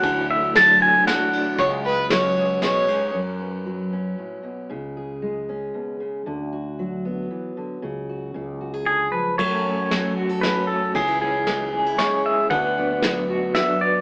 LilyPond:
<<
  \new Staff \with { instrumentName = "Pedal steel guitar" } { \time 3/4 \key fis \minor \tempo 4 = 115 fis''8 e''8 a''8 gis''8 fis''4~ | fis''2 r4 | r2. | r2. |
r2. | r2 gis'8 b'8 | cis''4. r8 b'8 a'8 | gis'8 gis'4. cis''8 e''8 |
fis''4. r8 e''8 d''8 | }
  \new Staff \with { instrumentName = "Fiddle" } { \time 3/4 \key fis \minor r2. | cis''8 b'8 cis''4 cis''4 | r2. | r2. |
r2. | r2. | r2. | r2. |
r2. | }
  \new Staff \with { instrumentName = "Clean electric guitar" } { \time 3/4 \key fis \minor e8 a8 d'8 a8 fis'8 d'8 | gis8 gis8 cis'8 gis8 gis8 cis'8 | r2. | r2. |
r2. | r2. | a8 cis'8 a8 fis'8 cis'8 a8 | e8 cis'8 gis8 gis'8 cis'8 gis8 |
b8 d'8 b8 fis'8 d'8 b8 | }
  \new Staff \with { instrumentName = "Steel-string acoustic guitar" } { \clef bass \time 3/4 \key fis \minor << { r4. e'8 d'4 | r4. fis'8 r4 | r8 b'4 cis'4. | r8 gis'4 cis'4. |
r8 fis'4 b4. | r8 fis'8 r8 fis'16 gis'4~ gis'16 | a'8 cis'8 a'8 fis'16 a'4~ a'16 | cis'16 e'16 cis'8 e'8 cis'16 e'4~ e'16 |
fis'8 b8 d'8 fis'4. | } \\ { <d fis>4 fis4 a,4 | cis4 fis4 cis4 | fis,4 fis4 a,8 b,8 | cis4 gis4 b,8 cis8 |
d4 fis4 e8 d8 | cis4 cis4 d8 eis8 | fis,4 fis4 fis4 | cis4 gis4 gis4 |
d4 fis4 fis4 | } >> }
  \new Staff \with { instrumentName = "Fretless electric bass" } { \clef bass \time 3/4 \key fis \minor d,2 r4 | cis,2 b,8 gis,8 | fis,2 r4 | cis,2 r4 |
d,2 r4 | cis,4 cis,2 | fis,2 r4 | cis,2 r4 |
d,2 r4 | }
  \new DrumStaff \with { instrumentName = "Drums" } \drummode { \time 3/4 <bd cymr>4 <cymr sn>4 <cymr sn>8 cymr8 | <bd cymr>4 <cymr sn>4 <cymr sn>8 cymr8 | r4 r4 r4 | r4 r4 r4 |
r4 r4 r4 | r4 r4 r4 | <cymc bd>4 <cymr sn>4 <cymr sn>4 | <bd cymr>4 <cymr sn>4 <cymr sn>4 |
<bd cymr>4 <cymr sn>4 <cymr sn>4 | }
>>